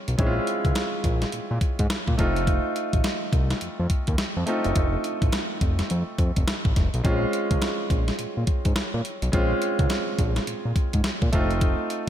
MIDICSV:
0, 0, Header, 1, 4, 480
1, 0, Start_track
1, 0, Key_signature, -5, "minor"
1, 0, Tempo, 571429
1, 156, Time_signature, 4, 2, 24, 8
1, 10156, End_track
2, 0, Start_track
2, 0, Title_t, "Grand piano"
2, 0, Program_c, 0, 0
2, 0, Control_c, 0, 64, 127
2, 0, Note_on_c, 0, 56, 83
2, 0, Note_on_c, 0, 60, 71
2, 0, Note_on_c, 0, 61, 76
2, 0, Note_on_c, 0, 65, 92
2, 119, Note_off_c, 0, 56, 0
2, 122, Note_off_c, 0, 60, 0
2, 126, Note_off_c, 0, 61, 0
2, 129, Note_off_c, 0, 65, 0
2, 149, Note_on_c, 0, 56, 82
2, 155, Note_on_c, 0, 60, 69
2, 160, Note_on_c, 0, 61, 71
2, 167, Note_on_c, 0, 64, 72
2, 222, Note_on_c, 0, 65, 87
2, 229, Note_off_c, 0, 64, 0
2, 1799, Note_off_c, 0, 56, 0
2, 1802, Note_off_c, 0, 60, 0
2, 1804, Note_off_c, 0, 61, 0
2, 1827, Note_on_c, 0, 57, 72
2, 1832, Note_on_c, 0, 60, 68
2, 1834, Note_off_c, 0, 65, 0
2, 1838, Note_on_c, 0, 63, 67
2, 1846, Note_on_c, 0, 65, 89
2, 1848, Control_c, 0, 64, 0
2, 1991, Control_c, 0, 64, 127
2, 3718, Note_off_c, 0, 57, 0
2, 3720, Note_off_c, 0, 60, 0
2, 3723, Note_off_c, 0, 63, 0
2, 3727, Note_off_c, 0, 65, 0
2, 3749, Note_on_c, 0, 57, 78
2, 3756, Note_on_c, 0, 60, 71
2, 3763, Note_on_c, 0, 63, 70
2, 3768, Note_on_c, 0, 65, 77
2, 5639, Note_off_c, 0, 57, 0
2, 5642, Note_off_c, 0, 60, 0
2, 5646, Note_off_c, 0, 63, 0
2, 5648, Note_off_c, 0, 65, 0
2, 5910, Note_on_c, 0, 56, 79
2, 5916, Note_on_c, 0, 60, 72
2, 5923, Note_on_c, 0, 61, 79
2, 5926, Control_c, 0, 64, 0
2, 5931, Note_on_c, 0, 65, 89
2, 6092, Control_c, 0, 64, 127
2, 7799, Note_off_c, 0, 56, 0
2, 7802, Note_off_c, 0, 60, 0
2, 7806, Note_off_c, 0, 61, 0
2, 7810, Note_off_c, 0, 65, 0
2, 7829, Note_on_c, 0, 56, 83
2, 7836, Note_on_c, 0, 60, 76
2, 7842, Note_on_c, 0, 61, 73
2, 7849, Note_on_c, 0, 65, 88
2, 9479, Note_off_c, 0, 56, 0
2, 9482, Note_off_c, 0, 60, 0
2, 9485, Note_off_c, 0, 61, 0
2, 9489, Note_off_c, 0, 65, 0
2, 9512, Note_on_c, 0, 57, 80
2, 9519, Note_on_c, 0, 60, 71
2, 9524, Note_on_c, 0, 63, 68
2, 9527, Control_c, 0, 64, 0
2, 9531, Note_on_c, 0, 65, 84
2, 9683, Control_c, 0, 64, 127
2, 10156, Note_off_c, 0, 57, 0
2, 10156, Note_off_c, 0, 60, 0
2, 10156, Note_off_c, 0, 63, 0
2, 10156, Note_off_c, 0, 65, 0
2, 10156, End_track
3, 0, Start_track
3, 0, Title_t, "Analog synth bass"
3, 0, Program_c, 1, 38
3, 68, Note_on_c, 1, 35, 85
3, 134, Note_off_c, 1, 35, 0
3, 158, Note_on_c, 1, 34, 118
3, 333, Note_off_c, 1, 34, 0
3, 546, Note_on_c, 1, 37, 97
3, 613, Note_off_c, 1, 37, 0
3, 876, Note_on_c, 1, 34, 92
3, 1052, Note_off_c, 1, 34, 0
3, 1120, Note_on_c, 1, 46, 47
3, 1179, Note_off_c, 1, 46, 0
3, 1267, Note_on_c, 1, 46, 90
3, 1333, Note_off_c, 1, 46, 0
3, 1508, Note_on_c, 1, 44, 89
3, 1574, Note_off_c, 1, 44, 0
3, 1745, Note_on_c, 1, 46, 86
3, 1812, Note_off_c, 1, 46, 0
3, 1840, Note_on_c, 1, 29, 90
3, 2191, Note_off_c, 1, 29, 0
3, 2466, Note_on_c, 1, 33, 81
3, 2533, Note_off_c, 1, 33, 0
3, 2795, Note_on_c, 1, 36, 92
3, 2972, Note_off_c, 1, 36, 0
3, 3042, Note_on_c, 1, 41, 48
3, 3100, Note_off_c, 1, 41, 0
3, 3188, Note_on_c, 1, 41, 101
3, 3254, Note_off_c, 1, 41, 0
3, 3428, Note_on_c, 1, 39, 83
3, 3494, Note_off_c, 1, 39, 0
3, 3668, Note_on_c, 1, 41, 91
3, 3734, Note_off_c, 1, 41, 0
3, 3909, Note_on_c, 1, 30, 89
3, 3974, Note_off_c, 1, 30, 0
3, 3999, Note_on_c, 1, 29, 105
3, 4174, Note_off_c, 1, 29, 0
3, 4385, Note_on_c, 1, 33, 80
3, 4452, Note_off_c, 1, 33, 0
3, 4716, Note_on_c, 1, 29, 94
3, 4892, Note_off_c, 1, 29, 0
3, 4963, Note_on_c, 1, 41, 111
3, 5069, Note_off_c, 1, 41, 0
3, 5198, Note_on_c, 1, 41, 102
3, 5306, Note_off_c, 1, 41, 0
3, 5350, Note_on_c, 1, 29, 89
3, 5415, Note_off_c, 1, 29, 0
3, 5587, Note_on_c, 1, 33, 73
3, 5654, Note_off_c, 1, 33, 0
3, 5683, Note_on_c, 1, 29, 81
3, 5790, Note_off_c, 1, 29, 0
3, 5831, Note_on_c, 1, 35, 88
3, 5896, Note_off_c, 1, 35, 0
3, 5921, Note_on_c, 1, 34, 101
3, 6095, Note_off_c, 1, 34, 0
3, 6307, Note_on_c, 1, 37, 79
3, 6373, Note_off_c, 1, 37, 0
3, 6639, Note_on_c, 1, 34, 98
3, 6814, Note_off_c, 1, 34, 0
3, 6885, Note_on_c, 1, 46, 47
3, 6942, Note_off_c, 1, 46, 0
3, 7032, Note_on_c, 1, 46, 92
3, 7096, Note_off_c, 1, 46, 0
3, 7271, Note_on_c, 1, 44, 87
3, 7336, Note_off_c, 1, 44, 0
3, 7510, Note_on_c, 1, 46, 90
3, 7575, Note_off_c, 1, 46, 0
3, 7748, Note_on_c, 1, 35, 92
3, 7814, Note_off_c, 1, 35, 0
3, 7840, Note_on_c, 1, 34, 107
3, 8015, Note_off_c, 1, 34, 0
3, 8227, Note_on_c, 1, 37, 92
3, 8293, Note_off_c, 1, 37, 0
3, 8557, Note_on_c, 1, 34, 97
3, 8733, Note_off_c, 1, 34, 0
3, 8800, Note_on_c, 1, 46, 47
3, 8859, Note_off_c, 1, 46, 0
3, 8949, Note_on_c, 1, 46, 83
3, 9015, Note_off_c, 1, 46, 0
3, 9189, Note_on_c, 1, 44, 94
3, 9254, Note_off_c, 1, 44, 0
3, 9426, Note_on_c, 1, 46, 90
3, 9492, Note_off_c, 1, 46, 0
3, 9521, Note_on_c, 1, 29, 90
3, 9872, Note_off_c, 1, 29, 0
3, 10156, End_track
4, 0, Start_track
4, 0, Title_t, "Drums"
4, 66, Note_on_c, 9, 42, 50
4, 150, Note_off_c, 9, 42, 0
4, 157, Note_on_c, 9, 36, 120
4, 157, Note_on_c, 9, 42, 77
4, 241, Note_off_c, 9, 36, 0
4, 241, Note_off_c, 9, 42, 0
4, 397, Note_on_c, 9, 42, 74
4, 481, Note_off_c, 9, 42, 0
4, 544, Note_on_c, 9, 36, 92
4, 546, Note_on_c, 9, 42, 51
4, 628, Note_off_c, 9, 36, 0
4, 630, Note_off_c, 9, 42, 0
4, 633, Note_on_c, 9, 42, 70
4, 636, Note_on_c, 9, 38, 113
4, 717, Note_off_c, 9, 42, 0
4, 720, Note_off_c, 9, 38, 0
4, 874, Note_on_c, 9, 36, 91
4, 878, Note_on_c, 9, 42, 66
4, 958, Note_off_c, 9, 36, 0
4, 962, Note_off_c, 9, 42, 0
4, 1022, Note_on_c, 9, 42, 45
4, 1024, Note_on_c, 9, 38, 68
4, 1106, Note_off_c, 9, 42, 0
4, 1108, Note_off_c, 9, 38, 0
4, 1112, Note_on_c, 9, 42, 71
4, 1196, Note_off_c, 9, 42, 0
4, 1354, Note_on_c, 9, 36, 85
4, 1354, Note_on_c, 9, 42, 70
4, 1438, Note_off_c, 9, 36, 0
4, 1438, Note_off_c, 9, 42, 0
4, 1504, Note_on_c, 9, 42, 53
4, 1506, Note_on_c, 9, 36, 75
4, 1588, Note_off_c, 9, 42, 0
4, 1590, Note_off_c, 9, 36, 0
4, 1596, Note_on_c, 9, 38, 111
4, 1597, Note_on_c, 9, 42, 66
4, 1680, Note_off_c, 9, 38, 0
4, 1681, Note_off_c, 9, 42, 0
4, 1744, Note_on_c, 9, 36, 79
4, 1828, Note_off_c, 9, 36, 0
4, 1836, Note_on_c, 9, 42, 69
4, 1839, Note_on_c, 9, 36, 91
4, 1920, Note_off_c, 9, 42, 0
4, 1923, Note_off_c, 9, 36, 0
4, 1986, Note_on_c, 9, 42, 50
4, 2070, Note_off_c, 9, 42, 0
4, 2077, Note_on_c, 9, 36, 108
4, 2078, Note_on_c, 9, 42, 73
4, 2161, Note_off_c, 9, 36, 0
4, 2162, Note_off_c, 9, 42, 0
4, 2317, Note_on_c, 9, 42, 75
4, 2401, Note_off_c, 9, 42, 0
4, 2464, Note_on_c, 9, 36, 93
4, 2467, Note_on_c, 9, 42, 48
4, 2548, Note_off_c, 9, 36, 0
4, 2551, Note_off_c, 9, 42, 0
4, 2554, Note_on_c, 9, 42, 69
4, 2556, Note_on_c, 9, 38, 118
4, 2638, Note_off_c, 9, 42, 0
4, 2640, Note_off_c, 9, 38, 0
4, 2794, Note_on_c, 9, 36, 87
4, 2796, Note_on_c, 9, 42, 66
4, 2878, Note_off_c, 9, 36, 0
4, 2880, Note_off_c, 9, 42, 0
4, 2944, Note_on_c, 9, 42, 47
4, 2945, Note_on_c, 9, 38, 67
4, 3028, Note_off_c, 9, 42, 0
4, 3029, Note_off_c, 9, 38, 0
4, 3033, Note_on_c, 9, 42, 80
4, 3117, Note_off_c, 9, 42, 0
4, 3274, Note_on_c, 9, 36, 83
4, 3274, Note_on_c, 9, 42, 64
4, 3358, Note_off_c, 9, 36, 0
4, 3358, Note_off_c, 9, 42, 0
4, 3420, Note_on_c, 9, 42, 52
4, 3426, Note_on_c, 9, 36, 79
4, 3504, Note_off_c, 9, 42, 0
4, 3510, Note_off_c, 9, 36, 0
4, 3513, Note_on_c, 9, 38, 108
4, 3514, Note_on_c, 9, 42, 66
4, 3597, Note_off_c, 9, 38, 0
4, 3598, Note_off_c, 9, 42, 0
4, 3753, Note_on_c, 9, 42, 65
4, 3837, Note_off_c, 9, 42, 0
4, 3901, Note_on_c, 9, 42, 51
4, 3985, Note_off_c, 9, 42, 0
4, 3994, Note_on_c, 9, 42, 76
4, 3996, Note_on_c, 9, 36, 115
4, 4078, Note_off_c, 9, 42, 0
4, 4080, Note_off_c, 9, 36, 0
4, 4235, Note_on_c, 9, 42, 72
4, 4319, Note_off_c, 9, 42, 0
4, 4384, Note_on_c, 9, 36, 96
4, 4384, Note_on_c, 9, 42, 52
4, 4468, Note_off_c, 9, 36, 0
4, 4468, Note_off_c, 9, 42, 0
4, 4472, Note_on_c, 9, 42, 69
4, 4475, Note_on_c, 9, 38, 111
4, 4556, Note_off_c, 9, 42, 0
4, 4559, Note_off_c, 9, 38, 0
4, 4714, Note_on_c, 9, 36, 86
4, 4715, Note_on_c, 9, 42, 63
4, 4798, Note_off_c, 9, 36, 0
4, 4799, Note_off_c, 9, 42, 0
4, 4862, Note_on_c, 9, 42, 46
4, 4863, Note_on_c, 9, 38, 69
4, 4946, Note_off_c, 9, 42, 0
4, 4947, Note_off_c, 9, 38, 0
4, 4955, Note_on_c, 9, 42, 74
4, 5039, Note_off_c, 9, 42, 0
4, 5195, Note_on_c, 9, 42, 63
4, 5196, Note_on_c, 9, 36, 83
4, 5279, Note_off_c, 9, 42, 0
4, 5280, Note_off_c, 9, 36, 0
4, 5346, Note_on_c, 9, 42, 55
4, 5349, Note_on_c, 9, 36, 82
4, 5430, Note_off_c, 9, 42, 0
4, 5433, Note_off_c, 9, 36, 0
4, 5440, Note_on_c, 9, 38, 115
4, 5441, Note_on_c, 9, 42, 68
4, 5524, Note_off_c, 9, 38, 0
4, 5525, Note_off_c, 9, 42, 0
4, 5586, Note_on_c, 9, 36, 89
4, 5670, Note_off_c, 9, 36, 0
4, 5681, Note_on_c, 9, 36, 88
4, 5681, Note_on_c, 9, 38, 57
4, 5681, Note_on_c, 9, 42, 72
4, 5765, Note_off_c, 9, 36, 0
4, 5765, Note_off_c, 9, 38, 0
4, 5765, Note_off_c, 9, 42, 0
4, 5828, Note_on_c, 9, 42, 52
4, 5912, Note_off_c, 9, 42, 0
4, 5919, Note_on_c, 9, 36, 117
4, 5919, Note_on_c, 9, 42, 79
4, 6003, Note_off_c, 9, 36, 0
4, 6003, Note_off_c, 9, 42, 0
4, 6160, Note_on_c, 9, 42, 73
4, 6244, Note_off_c, 9, 42, 0
4, 6307, Note_on_c, 9, 36, 96
4, 6308, Note_on_c, 9, 42, 56
4, 6391, Note_off_c, 9, 36, 0
4, 6392, Note_off_c, 9, 42, 0
4, 6398, Note_on_c, 9, 42, 69
4, 6400, Note_on_c, 9, 38, 108
4, 6482, Note_off_c, 9, 42, 0
4, 6484, Note_off_c, 9, 38, 0
4, 6637, Note_on_c, 9, 36, 92
4, 6640, Note_on_c, 9, 42, 66
4, 6721, Note_off_c, 9, 36, 0
4, 6724, Note_off_c, 9, 42, 0
4, 6786, Note_on_c, 9, 42, 43
4, 6787, Note_on_c, 9, 38, 69
4, 6870, Note_off_c, 9, 42, 0
4, 6871, Note_off_c, 9, 38, 0
4, 6877, Note_on_c, 9, 42, 73
4, 6961, Note_off_c, 9, 42, 0
4, 7116, Note_on_c, 9, 42, 65
4, 7117, Note_on_c, 9, 36, 92
4, 7200, Note_off_c, 9, 42, 0
4, 7201, Note_off_c, 9, 36, 0
4, 7266, Note_on_c, 9, 42, 51
4, 7269, Note_on_c, 9, 36, 85
4, 7350, Note_off_c, 9, 42, 0
4, 7353, Note_off_c, 9, 36, 0
4, 7356, Note_on_c, 9, 38, 114
4, 7358, Note_on_c, 9, 42, 65
4, 7440, Note_off_c, 9, 38, 0
4, 7442, Note_off_c, 9, 42, 0
4, 7601, Note_on_c, 9, 42, 68
4, 7685, Note_off_c, 9, 42, 0
4, 7747, Note_on_c, 9, 42, 50
4, 7831, Note_off_c, 9, 42, 0
4, 7838, Note_on_c, 9, 42, 81
4, 7839, Note_on_c, 9, 36, 105
4, 7922, Note_off_c, 9, 42, 0
4, 7923, Note_off_c, 9, 36, 0
4, 8078, Note_on_c, 9, 42, 70
4, 8162, Note_off_c, 9, 42, 0
4, 8225, Note_on_c, 9, 36, 94
4, 8225, Note_on_c, 9, 42, 52
4, 8309, Note_off_c, 9, 36, 0
4, 8309, Note_off_c, 9, 42, 0
4, 8313, Note_on_c, 9, 42, 71
4, 8316, Note_on_c, 9, 38, 110
4, 8397, Note_off_c, 9, 42, 0
4, 8400, Note_off_c, 9, 38, 0
4, 8556, Note_on_c, 9, 36, 87
4, 8558, Note_on_c, 9, 42, 66
4, 8640, Note_off_c, 9, 36, 0
4, 8642, Note_off_c, 9, 42, 0
4, 8704, Note_on_c, 9, 42, 48
4, 8705, Note_on_c, 9, 38, 67
4, 8788, Note_off_c, 9, 42, 0
4, 8789, Note_off_c, 9, 38, 0
4, 8797, Note_on_c, 9, 42, 80
4, 8881, Note_off_c, 9, 42, 0
4, 9036, Note_on_c, 9, 36, 87
4, 9036, Note_on_c, 9, 42, 68
4, 9120, Note_off_c, 9, 36, 0
4, 9120, Note_off_c, 9, 42, 0
4, 9184, Note_on_c, 9, 42, 54
4, 9188, Note_on_c, 9, 36, 83
4, 9268, Note_off_c, 9, 42, 0
4, 9272, Note_off_c, 9, 36, 0
4, 9274, Note_on_c, 9, 38, 120
4, 9275, Note_on_c, 9, 42, 71
4, 9358, Note_off_c, 9, 38, 0
4, 9359, Note_off_c, 9, 42, 0
4, 9424, Note_on_c, 9, 36, 85
4, 9508, Note_off_c, 9, 36, 0
4, 9515, Note_on_c, 9, 42, 66
4, 9519, Note_on_c, 9, 36, 88
4, 9599, Note_off_c, 9, 42, 0
4, 9603, Note_off_c, 9, 36, 0
4, 9665, Note_on_c, 9, 42, 50
4, 9749, Note_off_c, 9, 42, 0
4, 9755, Note_on_c, 9, 42, 77
4, 9757, Note_on_c, 9, 36, 118
4, 9839, Note_off_c, 9, 42, 0
4, 9841, Note_off_c, 9, 36, 0
4, 9997, Note_on_c, 9, 42, 75
4, 10081, Note_off_c, 9, 42, 0
4, 10156, End_track
0, 0, End_of_file